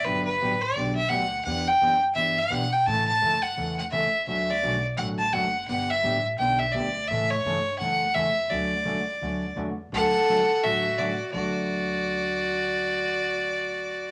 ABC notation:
X:1
M:4/4
L:1/16
Q:"Swing" 1/4=170
K:D
V:1 name="Fiddle"
B2 B4 d4 e2 f4 | f2 g4 z2 e2 f4 g2 | a2 a4 f4 f2 e4 | e2 d4 z2 f2 a2 f4 |
f2 e4 z2 g2 e2 d4 | e2 c6 f4 e4 | d12 z4 | f8 e4 d3 z |
d16- | d16 |]
V:2 name="Fiddle"
z16 | z16 | z16 | z16 |
z16 | z16 | z16 | A8 F4 F3 z |
F16- | F16 |]
V:3 name="Hollow-body jazz guitar"
[D,F,B,DG]2 z2 [D,F,B,DG] z3 [D,F,B,DG]2 z2 [D,F,B,DG] z3 | [E,B,DG]2 z2 [E,B,DG] z3 [E,B,DG]2 z2 [E,B,DG] z3 | [C,E,A,CA]2 z2 [C,E,A,CA] z3 [C,E,A,CA]2 z2 [C,E,A,CA] z3 | [D,F,A,CF]2 z2 [D,F,A,CF] z3 [D,F,A,CF]2 z2 [D,F,A,CF] z3 |
[D,G,B,DG]2 z2 [D,G,B,DG] z3 [D,G,B,DG]2 z2 [D,G,B,DG] z3 | [C,E,A,CA]2 z2 [C,E,A,CA] z3 [C,E,A,CA]2 z2 [C,E,A,CA] z3 | [D,F,A,CF]2 z2 [D,F,A,CF] z3 [D,F,A,CF]2 z2 [D,F,A,CF] z3 | [D,F,A,CF]2 z2 [D,F,A,CF] z3 [D,F,A,CF]2 z2 [D,F,A,CF] z3 |
[D,F,A,F]16- | [D,F,A,F]16 |]
V:4 name="Upright bass" clef=bass
G,,,4 A,,,4 B,,,4 D,,4 | E,,4 F,,4 G,,4 B,,4 | A,,4 F,,4 E,,4 C,,4 | D,,4 B,,,4 A,,,4 F,,,4 |
G,,,4 A,,,4 B,,,4 D,,4 | A,,4 z4 F,,4 E,,4 | D,,4 C,,4 D,,4 E,,4 | D,,8 A,,,8 |
D,,16- | D,,16 |]